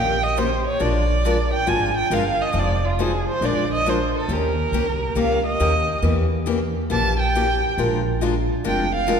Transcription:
Already playing: A#1 D#3 A#3 C#4 G4 A#4 G5
0.23 D#5
0.37 D#3 A#3 C#4 G4 A#4 C5
0.67 C#5
0.80 A#1 F3 G#3 D4 F4 A#4 D5
1.25 F3 G#3 D4 F4 A#4
1.53 G5
1.67 G#1 F3 G#3 D4 F4 A#4 G#5
1.97 G5
2.10 G1 F3 G#3 D4 F4 A#4 F5
2.42 D#5
2.53 F1 F3 G#3 D#4 F4 C5
2.59 D5
2.85 F4
2.99 F3 G#3 D#4 F4 G#4 C5
3.28 C5
3.41 A#1 F3 G#3 D4 F4 A#4 D5
3.74 D#5
3.86 F3 G#3 D4 F4 A#4 C5
4.18 A4
4.28 D#2 D#3 A#3 C#4 G4 A#4
4.72 C2 D#3 A#3 C#4 G4 A#4
5.15 C#2 D#3 A#3 C#4 G4 A#4 F5
5.46 D#5
5.60 D#2 D#3 A#3 C#4 G4 A#4
6.02 E2 E3 A#3 C#4 G4
6.46 E3 A#3 C#4 G4
6.90 A#1 E3 A#3 C#4 G4 A5
7.20 G5
7.35 E3 A#3 C#4 G4
7.78 A#1 F3 G#3 D4 F4 A#4
8.21 F3 G#3 D4 F4 A#4
8.64 F1 F3 G#3 D4 F4 A#4 G5
8.95 F5
9.07 F3 G#3 D4 F4 A#4

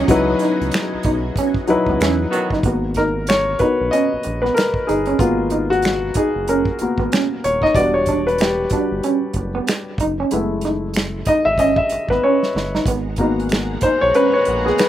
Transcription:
Already playing: F#3 B3 C#4 D#4 E4 F#4 G#4 C#5 D#5
0.08 C#2 F#3 B3 D#4 E4 B4, kick, closed hi-hat
0.39 D#4, snare, closed hi-hat
0.61 C#2, closed hi-hat
0.71 finger snap, snare, closed hi-hat
0.94 B1
1.03 B1 D#4, kick, closed hi-hat
1.36 C#4, kick, closed hi-hat
1.54 kick
1.67 C#2 F#3 D#4 E4 B4, muted clean electric guitar stroke, closed hi-hat
1.86 C#2 B3, kick
1.99 E2 B2 E3 G#3 C#4 E4, finger snap, snare, closed hi-hat
2.31 D#3 F#3 B3 F#4, muted clean electric guitar stroke, closed hi-hat
2.50 G1 D#4, kick, snare
2.63 G#1 A#3 B3 F#4, kick, closed hi-hat
2.94 D#4 A#4, kick, snare, closed hi-hat
3.27 C#5, finger snap, snare, closed hi-hat
3.59 B1 B3 D#4 F#4 A#4 B4, kick, closed hi-hat
3.81 B1
3.91 C#4 D#5, closed hi-hat
4.13 A#1
4.23 A#1, muted clean electric guitar stroke, closed hi-hat
4.42 B3 B4, snare
4.54 A#4, finger snap, muted clean electric guitar stroke, closed hi-hat
4.59 snare
4.74 kick
4.87 G1 D#4 G#4, closed hi-hat
5.05 C#4, closed hi-hat
5.19 G#1 A#3 B3 F4 F#4, kick, closed hi-hat
5.50 D#4, closed hi-hat
5.70 F#4, closed hi-hat
5.82 finger snap, snare, closed hi-hat
6.14 F#1 D#4 G#4, kick, closed hi-hat
6.35 F#1
6.48 C#4 A#4, closed hi-hat
6.65 kick
6.79 G#1 A#3 B3 F#4, muted clean electric guitar stroke, closed hi-hat
6.98 G#1 B3, kick
7.12 C#4, finger snap, snare, closed hi-hat
7.44 D#1 C#5, muted clean electric guitar stroke, closed hi-hat
7.62 D#4 D#5, kick, snare
7.75 E1 G3 B3 D4 F#4 D5, kick, closed hi-hat
7.94 C#5
8.06 D4, kick, closed hi-hat
8.27 B4, closed hi-hat
8.38 G4, finger snap, snare, closed hi-hat
8.70 G1 G3 D4 F#4, kick, closed hi-hat
8.91 G1
9.03 C#4, closed hi-hat
9.34 F#1, muted clean electric guitar stroke, kick, closed hi-hat
9.55 B3
9.67 finger snap, muted clean electric guitar stroke, snare, closed hi-hat
9.98 F#1 D#4, kick, closed hi-hat
10.20 C#4
10.31 F#1 G#3 A3 B3 E4, closed hi-hat
10.61 D#4, snare, closed hi-hat
10.94 finger snap, snare, closed hi-hat
11.25 G#1 D#4 D#5, kick, closed hi-hat
11.45 G#1 E5
11.58 C#4 D#5, kick, closed hi-hat
11.76 E5, kick
11.89 G#1, muted clean electric guitar stroke, closed hi-hat
12.09 G#1 B3 B4, kick, snare
12.23 C#4 C#5
12.43 snare
12.55 G1, muted clean electric guitar stroke, snare
12.75 D#4, snare
12.83 G#1 G#3 G#4 F#5 A#5, kick, closed hi-hat
12.88 B3
13.16 A#3 B3 F#4, kick, closed hi-hat
13.21 D#4
13.39 closed hi-hat
13.49 finger snap, snare, closed hi-hat
13.81 B1 D#4 C5, kick, closed hi-hat
14.01 B1 C#5
14.13 D#3 A#3 B3 C#4 D#4 B4, closed hi-hat
14.33 C#5
14.45 A#1, muted clean electric guitar stroke, closed hi-hat
14.65 B3 G#4, snare
14.78 B4, finger snap, muted clean electric guitar stroke, snare, closed hi-hat

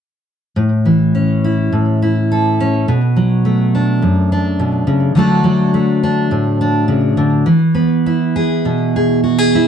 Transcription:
0.56 A2
0.85 E3
1.15 C#4
1.44 E4
1.72 A2
2.02 E4
2.32 A4
2.60 C#4
2.88 B2
3.16 F#3
3.45 A3
3.75 D4
4.02 F#2
4.32 D4
4.59 B2
4.87 C#3
5.15 D3 F#3 A3 D4 F#4
5.44 F#3
5.74 A3
6.03 D4
6.31 A2
6.61 D4
6.88 C#3
7.17 D3
7.46 E3
7.75 B3
8.06 E4
8.36 G#4
8.65 B2
8.96 G#4
9.24 F#4
9.38 G#4
9.55 E4

